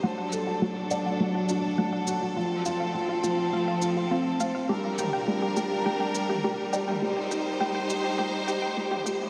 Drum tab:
SH |--x---x---x---x-|--x---x---x---x-|--x---x---x---x-|--x---x---x---x-|
T2 |----------------|----------------|--o--------o---o|-------------o-o|